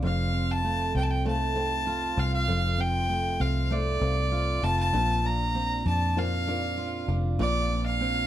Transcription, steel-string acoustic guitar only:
Already playing: C4 F4
0.02 F2
0.33 C4
0.65 A3
0.95 C4
1.26 A3
1.56 C4
1.87 F4
2.17 C4
2.48 F2
2.78 C4
3.09 A3
3.40 C4
3.71 A3
4.01 C4
4.32 F4
4.62 C4
4.94 A#2
5.25 D4
5.55 C4
5.86 D4
6.17 C4
6.47 D4
6.78 F4
7.09 D4
7.39 A#2
7.70 D4
8.01 C4

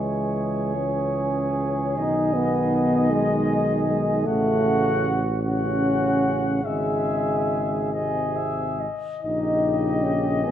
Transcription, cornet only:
Already playing: C#5
1.98 D#5
4.27 F#5
5.44 F#5
6.65 E5
7.93 D#5
8.36 E5
8.80 D#5
9.23 D#5

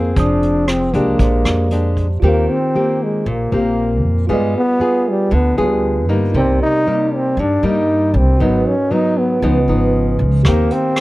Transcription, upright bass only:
Already playing: F2
0.17 F1
0.94 C2
1.19 A#1
1.45 F2
2.22 D#2
3.26 A#1
3.52 A#1
4.04 F2
4.30 G2
5.32 D2
5.58 D2
6.09 G2
6.34 C2
7.37 G2
7.63 G2
8.14 C2
8.40 G#1
9.42 C#2
9.68 G#1
10.19 C#2
10.45 D#2

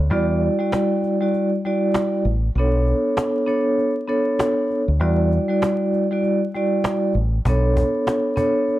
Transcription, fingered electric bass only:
0.00 D2
0.11 E2
2.25 A1
2.55 B1
4.88 D2
5.00 E2
7.15 A1
7.45 B1

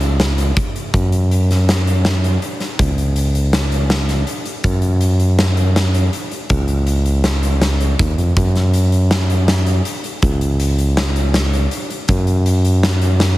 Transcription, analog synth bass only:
Already playing: C#2
0.94 F#2
2.79 C#2
4.64 F#2
6.50 C#2
7.99 D#2
8.18 F2
8.37 F#2
10.22 C#2
12.09 F#2

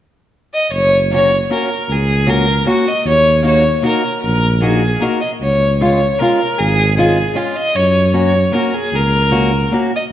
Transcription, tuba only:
0.71 F#1
1.89 C#2
3.05 D#2
4.24 A#1
5.42 C#2
6.60 G#1
7.76 F#2
8.93 C#2

